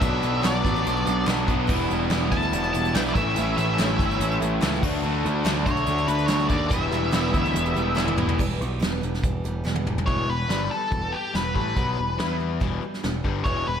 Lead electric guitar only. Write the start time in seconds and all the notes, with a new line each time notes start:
0.00 E5
0.46 D5
2.32 A5
2.74 A5
2.95 G5
3.09 D5
3.14 E5
3.58 E5
5.66 C#5
6.08 B4
6.26 C#5
6.49 D5
6.68 E5
10.06 C#5
10.30 B4
10.71 A4
11.12 G4
11.36 B4
11.55 B4
13.44 C#5
13.67 B4